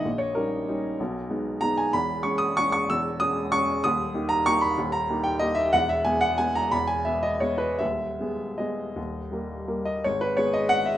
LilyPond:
<<
  \new Staff \with { instrumentName = "Upright piano" } { \time 3/4 \key gis \minor \tempo 4 = 185 dis''8 cis''8 ais'2~ | ais'4. r8 ais''8 gis''8 | b''4 cis'''8 dis'''8 cis'''8 cis'''8 | e'''4 dis'''4 cis'''4 |
dis'''4. ais''8 cis'''8 b''8~ | b''8 ais''4 g''8 dis''8 e''8 | fis''8 e''8 gis''8 fis''8 gis''8 ais''8 | b''8 gis''8 e''8 dis''8 cis''8 b'8 |
e''2 dis''4~ | dis''2~ dis''8 dis''8 | cis''8 b'8 cis''8 dis''8 fis''8 e''8 | }
  \new Staff \with { instrumentName = "Upright piano" } { \time 3/4 \key gis \minor <ais,, ais,>4 <g cis' dis'>4 <g cis' dis'>4 | <b,, b,>4 <gis b dis'>4 <gis b dis'>4 | <e,, e,>4 <gis cis' gis'>4 <gis cis' gis'>4 | <e,, e,>4 <gis cis' gis'>4 <gis cis' gis'>4 |
<dis,, dis,>4 <ais dis' g'>4 <ais dis' g'>4 | <dis,, dis,>4 <ais dis' g'>4 <ais dis' g'>4 | <e,, e,>4 <gis b gis'>4 <gis b gis'>4 | <e,, e,>4 <gis b gis'>4 <gis b gis'>4 |
<dis,, dis,>4 <gis b gis'>4 <gis b gis'>4 | <dis,, dis,>4 <g ais ais'>4 <g ais ais'>4 | gis,,4 <gis b gis'>2 | }
>>